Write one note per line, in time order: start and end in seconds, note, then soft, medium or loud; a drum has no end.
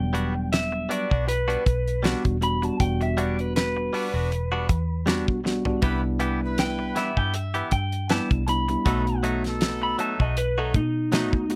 0.00 0.86 E1 loud
0.00 1.04 F#3 medium
0.00 1.04 G3 medium
0.00 1.04 B3 medium
0.00 1.04 D4 medium
0.00 0.50 G5 medium
0.13 0.35 G3 medium
0.13 0.34 B3 medium
0.13 0.34 D4 medium
0.13 0.33 F#4 medium
0.13 closed hi-hat medium
0.34 muted clean electric guitar stroke soft
0.53 0.89 E5 medium
0.53 snare loud
0.53 closed hi-hat medium
0.72 muted clean electric guitar stroke soft
0.89 1.11 G3 medium
0.89 1.11 B3 medium
0.89 1.10 D4 medium
0.89 1.09 F#4 medium
0.89 1.28 D5 medium
0.89 closed hi-hat medium
1.10 1.56 B1 medium
1.10 1.26 B3 soft
1.10 1.27 D4 soft
1.10 1.27 F#4 medium
1.10 kick medium
1.27 2.02 B4 loud
1.27 muted clean electric guitar stroke soft
1.27 closed hi-hat medium
1.48 1.64 G3 medium
1.48 1.64 B3 medium
1.48 1.65 D4 medium
1.48 1.65 F#4 medium
1.48 closed hi-hat soft
1.65 2.14 B1 medium
1.65 muted clean electric guitar stroke soft
1.65 kick loud
1.65 closed hi-hat medium
1.88 closed hi-hat soft
2.03 2.24 G3 medium
2.03 2.36 G3 medium
2.03 2.36 B3 medium
2.03 2.24 B3 medium
2.03 2.36 D4 medium
2.03 2.24 D4 medium
2.03 2.37 F#4 medium
2.03 2.23 F#4 medium
2.03 snare loud
2.03 closed hi-hat medium
2.24 2.69 E1 medium
2.24 muted clean electric guitar stroke soft
2.24 kick medium
2.24 closed hi-hat soft
2.41 2.59 G3 medium
2.41 2.59 B3 medium
2.41 2.59 D4 medium
2.41 2.59 F#4 medium
2.41 2.65 B5 loud
2.41 muted clean electric guitar stroke soft
2.41 closed hi-hat medium
2.62 2.77 G3 medium
2.62 2.76 B3 medium
2.62 2.77 D4 medium
2.62 2.77 F#4 medium
2.62 2.80 A5 medium
2.62 muted clean electric guitar stroke soft
2.62 closed hi-hat soft
2.80 3.89 E1 loud
2.80 4.07 G3 medium
2.80 4.07 B3 medium
2.80 4.08 D4 medium
2.80 4.08 F#4 medium
2.80 3.00 G5 medium
2.80 kick loud
2.80 closed hi-hat medium
3.01 3.19 E5 medium
3.01 muted clean electric guitar stroke soft
3.01 closed hi-hat soft
3.17 3.38 G3 medium
3.17 3.38 B3 medium
3.17 3.38 D4 medium
3.17 3.37 F#4 medium
3.17 3.40 D5 medium
3.17 closed hi-hat soft
3.38 3.55 B4 medium
3.38 muted clean electric guitar stroke soft
3.38 closed hi-hat soft
3.56 5.79 B4 medium
3.56 snare loud
3.56 closed hi-hat medium
3.77 muted clean electric guitar stroke soft
3.93 4.14 G3 medium
3.93 4.14 B3 medium
3.93 4.14 D4 medium
3.93 4.13 F#4 medium
3.93 open hi-hat medium
4.14 4.69 E1 medium
4.14 4.31 B3 soft
4.14 4.31 D4 soft
4.14 4.31 F#4 medium
4.31 muted clean electric guitar stroke soft
4.31 closed hi-hat medium
4.52 4.67 G3 medium
4.52 4.67 B3 medium
4.52 4.68 D4 medium
4.52 4.68 F#4 medium
4.68 5.28 E2 medium
4.68 muted clean electric guitar stroke soft
4.68 kick medium
4.68 closed hi-hat medium
5.06 5.27 G3 medium
5.06 5.39 G3 medium
5.06 5.39 B3 medium
5.06 5.27 B3 medium
5.06 5.39 D4 medium
5.06 5.26 D4 medium
5.06 5.39 F#4 loud
5.06 5.26 F#4 medium
5.06 snare loud
5.06 closed hi-hat medium
5.27 5.72 B1 medium
5.27 muted clean electric guitar stroke soft
5.27 kick medium
5.44 5.62 G3 medium
5.44 5.63 B3 medium
5.44 5.63 D4 medium
5.44 5.63 F#4 medium
5.44 muted clean electric guitar stroke soft
5.44 snare medium
5.65 5.80 G3 medium
5.65 5.80 B3 medium
5.65 5.80 D4 medium
5.65 5.80 F#4 loud
5.65 muted clean electric guitar stroke medium
5.65 floor tom medium
5.82 6.92 C2 loud
5.82 6.03 E3 medium
5.82 7.10 G3 medium
5.82 6.03 B3 medium
5.82 7.10 B3 medium
5.82 5.98 C4 medium
5.82 7.10 D4 medium
5.82 5.99 E4 medium
5.82 6.02 E4 medium
5.82 7.10 E4 medium
5.82 6.02 G4 medium
5.82 5.99 B4 loud
5.82 kick loud
5.82 closed hi-hat medium
6.03 muted clean electric guitar stroke soft
6.20 6.41 E3 medium
6.20 6.41 B3 medium
6.20 6.30 E4 medium
6.20 6.41 E4 medium
6.20 6.40 G4 medium
6.20 6.31 B4 medium
6.20 closed hi-hat medium
6.41 7.18 E4 medium
6.41 7.18 B4 medium
6.41 muted clean electric guitar stroke soft
6.58 6.96 G5 medium
6.58 snare loud
6.58 closed hi-hat medium
6.79 muted clean electric guitar stroke soft
6.96 7.17 E3 medium
6.96 7.17 B3 medium
6.96 7.16 E4 medium
6.96 7.15 G4 medium
6.96 7.17 E5 medium
6.96 snare soft
6.96 closed hi-hat medium
7.17 7.61 G2 medium
7.17 7.34 B3 soft
7.17 7.34 E4 soft
7.17 7.34 G4 medium
7.17 7.35 G5 medium
7.17 kick medium
7.34 7.71 E5 loud
7.34 muted clean electric guitar stroke soft
7.34 closed hi-hat medium
7.54 7.71 E3 medium
7.54 7.71 B3 medium
7.54 7.71 E4 medium
7.54 7.71 G4 medium
7.54 closed hi-hat soft
7.71 8.19 G2 medium
7.71 8.09 G5 medium
7.71 kick medium
7.71 closed hi-hat medium
7.92 closed hi-hat soft
8.09 8.31 E3 medium
8.09 8.42 G3 medium
8.09 8.30 B3 medium
8.09 8.42 B3 medium
8.09 8.43 D4 medium
8.09 8.30 E4 medium
8.09 8.43 E4 medium
8.09 8.29 G4 medium
8.09 8.47 A5 medium
8.09 snare loud
8.09 closed hi-hat medium
8.30 8.75 C2 medium
8.30 muted clean electric guitar stroke soft
8.30 kick medium
8.30 closed hi-hat soft
8.47 8.65 G3 medium
8.47 8.65 B3 medium
8.47 8.65 D4 medium
8.47 8.66 E4 medium
8.47 9.22 B5 loud
8.47 muted clean electric guitar stroke soft
8.47 closed hi-hat medium
8.68 8.83 G3 medium
8.68 8.83 B3 medium
8.68 8.83 D4 medium
8.68 8.84 E4 medium
8.68 muted clean electric guitar stroke soft
8.68 closed hi-hat soft
8.85 9.94 B1 medium
8.85 9.06 F#3 medium
8.85 9.07 A3 medium
8.85 10.13 A3 medium
8.85 9.03 B3 medium
8.85 10.13 B3 medium
8.85 9.06 D#4 medium
8.85 9.03 D#4 medium
8.85 10.13 D#4 medium
8.85 9.05 F#4 medium
8.85 10.14 F#4 medium
8.85 9.03 A4 medium
8.85 kick loud
8.85 closed hi-hat medium
9.06 muted clean electric guitar stroke soft
9.06 closed hi-hat soft
9.23 9.44 F#3 medium
9.23 9.44 A3 medium
9.23 9.43 D#4 medium
9.23 9.34 D#4 medium
9.23 9.43 F#4 medium
9.23 9.34 A4 medium
9.23 closed hi-hat medium
9.44 10.20 B3 medium
9.44 10.20 D#4 medium
9.44 10.21 A4 medium
9.44 muted clean electric guitar stroke medium
9.44 snare soft
9.44 closed hi-hat soft
9.61 snare loud
9.61 closed hi-hat medium
9.82 9.99 B5 medium
9.82 muted clean electric guitar stroke soft
9.99 10.20 F#3 medium
9.99 10.20 A3 medium
9.99 10.19 D#4 medium
9.99 10.18 F#4 medium
9.99 10.20 A5 medium
9.99 closed hi-hat medium
10.19 10.76 B1 medium
10.19 10.36 A3 soft
10.19 10.36 D#4 soft
10.19 10.36 F#4 soft
10.19 10.37 D#5 medium
10.19 kick medium
10.37 10.59 B4 loud
10.37 muted clean electric guitar stroke soft
10.37 closed hi-hat medium
10.58 10.73 F#3 medium
10.58 10.74 A3 medium
10.58 10.74 D#4 medium
10.58 10.75 F#4 medium
10.58 10.75 A4 medium
10.74 11.33 B2 medium
10.74 11.12 D#4 medium
10.74 muted clean electric guitar stroke soft
10.74 kick medium
10.74 closed hi-hat medium
11.11 11.33 F#3 medium
11.11 11.44 A3 medium
11.11 11.33 A3 medium
11.11 11.44 B3 medium
11.11 11.44 D#4 medium
11.11 11.33 D#4 medium
11.11 11.56 D#4 loud
11.11 11.45 F#4 medium
11.11 11.32 F#4 medium
11.11 snare loud
11.11 closed hi-hat medium
11.33 11.56 D#2 medium
11.33 muted clean electric guitar stroke soft
11.33 kick medium
11.49 11.56 A3 medium
11.49 11.56 B3 medium
11.49 11.56 D#4 medium
11.49 11.56 F#4 medium
11.49 muted clean electric guitar stroke soft
11.49 closed hi-hat medium